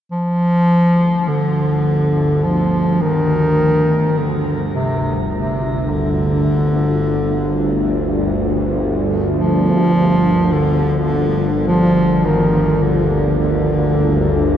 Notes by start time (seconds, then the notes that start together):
0.12 G1 D2 F3 G3
0.79 C5
1.28 D3
1.58 F4
2.44 F3
2.57 A#4
3.01 D#3
4.17 D3
4.75 C3
5.33 C3
5.90 D3
8.88 D5
9.38 F3
10.52 D3
11.67 F3
12.25 D#3
12.81 D3
13.39 D3